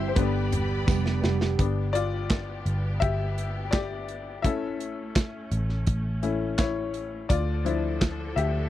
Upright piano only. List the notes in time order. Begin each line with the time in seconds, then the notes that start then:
Already playing: E3 G3 C4 E4 G4 C5 E5
0.08 C5
0.16 D3 G3 B3 D4 B4
1.58 G3 B3 D4
1.93 F4 D5
3.00 G4 E5
3.71 G4 D5
4.42 A3 C#4 E4 A4 E5
6.22 A3 C#4 E4
6.58 E4 C#5
7.29 F4 D5
7.65 F3 D4 E4
8.36 G4 E5